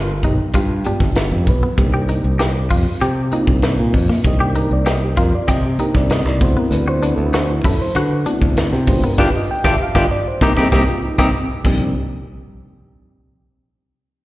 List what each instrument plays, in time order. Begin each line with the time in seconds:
Already playing: fingered electric bass G1, clean electric guitar F4, reed electric piano A#4
0.23 fingered electric bass B1, clean electric guitar D#4, reed electric piano G4, kick, closed hi-hat
0.39 muted fingered electric bass stroke
0.54 fingered electric bass G2, clean electric guitar F4, reed electric piano G4, kick, closed hi-hat
0.84 reed electric piano G#3 B3 D4 F4 G4, clean electric guitar D4, muted fingered electric bass stroke, closed hi-hat
1.00 fingered electric bass G1, kick, snare
1.16 snare, closed hi-hat
1.31 fingered electric bass F2
1.44 fingered electric bass B1, reed electric piano A#4, kick, closed hi-hat
1.49 reed electric piano B4
1.63 clean electric guitar B3
1.77 fingered electric bass C2, reed electric piano A#3 C4 D4 D#4 G4, kick, closed hi-hat
1.94 clean electric guitar G4
2.09 clean electric guitar D#4, closed hi-hat
2.24 fingered electric bass C2
2.39 clean electric guitar G4, snare, closed hi-hat
2.70 fingered electric bass F2, clean electric guitar F4, kick, open hi-hat
2.86 muted fingered electric bass stroke
3.01 fingered electric bass C3, clean electric guitar G4, closed hi-hat
3.32 reed electric piano A#3 C4 D4 D#4 F4, clean electric guitar D#4, muted fingered electric bass stroke, closed hi-hat
3.47 fingered electric bass C2, kick
3.62 snare, closed hi-hat
3.79 fingered electric bass A#2
3.94 fingered electric bass F2, kick, open hi-hat
4.09 clean electric guitar A#3, snare
4.24 fingered electric bass C2, reed electric piano A#3 C4 D4 D#4 G4 D#5, kick, closed hi-hat
4.40 clean electric guitar G4, reed electric piano G4
4.55 clean electric guitar D#4, reed electric piano A#4, closed hi-hat
4.71 fingered electric bass C2, reed electric piano D5
4.86 clean electric guitar G4, reed electric piano D#5, snare, closed hi-hat
5.04 reed electric piano G4
5.17 fingered electric bass F2, clean electric guitar F4, reed electric piano A#4, kick, closed hi-hat
5.33 reed electric piano D5, muted fingered electric bass stroke
5.48 fingered electric bass C3, clean electric guitar G4, reed electric piano D#5, kick, closed hi-hat
5.66 reed electric piano G4
5.79 reed electric piano A#3 C4 D4 D#4 G4 A#4, clean electric guitar D#4, muted fingered electric bass stroke, closed hi-hat
5.94 fingered electric bass C2, reed electric piano D5, kick, snare
6.10 reed electric piano D#5, snare, closed hi-hat
6.25 fingered electric bass C2, reed electric piano D5, snare
6.40 fingered electric bass D2, reed electric piano A3 B3 C4 E4 F#4 C5, kick, closed hi-hat
6.57 clean electric guitar B3, reed electric piano A#4
6.71 fingered electric bass D2, reed electric piano B4, closed hi-hat
6.88 clean electric guitar F#4, reed electric piano C5
7.03 clean electric guitar D4, reed electric piano B4, closed hi-hat
7.16 fingered electric bass D2, reed electric piano A4
7.26 reed electric piano B4
7.33 clean electric guitar F#4, reed electric piano C5, snare, closed hi-hat
7.51 reed electric piano E4
7.64 fingered electric bass F#2, clean electric guitar E4, reed electric piano A4, kick, open hi-hat
7.80 reed electric piano C5, muted fingered electric bass stroke
7.95 fingered electric bass D3, clean electric guitar F#4, reed electric piano B4, closed hi-hat
8.26 reed electric piano A3 B3 C4 E4 F#4, clean electric guitar D4, muted fingered electric bass stroke, closed hi-hat
8.41 fingered electric bass D2, kick
8.57 snare, closed hi-hat
8.73 fingered electric bass C3, snare
8.87 fingered electric bass G1, reed electric piano G#3 B3 D4 F4 G4 C5, kick, open hi-hat
9.04 clean electric guitar B3, reed electric piano A#4
9.18 fingered electric bass G1, clean electric guitar D4 F4 G4, reed electric piano D4 F4 G4 B4, kick, snare
9.36 reed electric piano D#5
9.51 reed electric piano G5
9.64 fingered electric bass G1, reed electric piano D4 F4 G4 E5, clean electric guitar D4 F4 G4, kick, snare
9.82 reed electric piano F5
9.95 fingered electric bass G1, reed electric piano D4 F4 G4 D#5, clean electric guitar D4 F4 G4, kick, snare
10.11 reed electric piano D5
10.28 reed electric piano C5
10.41 fingered electric bass C2, reed electric piano A#3 C4 D#4 A#4, clean electric guitar C4 D#4 G4, kick, snare
10.56 fingered electric bass C2, reed electric piano A#3 C4 D#4 G#4, clean electric guitar C4 D#4 G4, kick, snare
10.72 fingered electric bass C2, reed electric piano A#3 C4 D#4 G4, clean electric guitar C4 D#4 G4, kick, snare
10.89 reed electric piano F4
11.05 reed electric piano D#4
11.18 fingered electric bass C2, reed electric piano A#3 C4 D#4, clean electric guitar C4 D#4 G4, kick, snare
11.64 fingered electric bass C2, reed electric piano F3 A#3 D4 D#4 G4, clean electric guitar C4, kick, crash